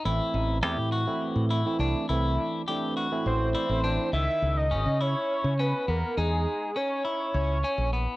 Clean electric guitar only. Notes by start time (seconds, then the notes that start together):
0.06 E4
0.63 G4
0.92 F#4
1.51 E4
1.80 D4
2.09 E4
2.68 G4
2.97 F#4
3.55 E4
3.84 D4
4.13 D#3
4.71 C#4
5.01 E4
5.59 C#4
5.88 B3
6.17 D#4
6.76 C#4
7.05 E4
7.64 C#4
7.93 B3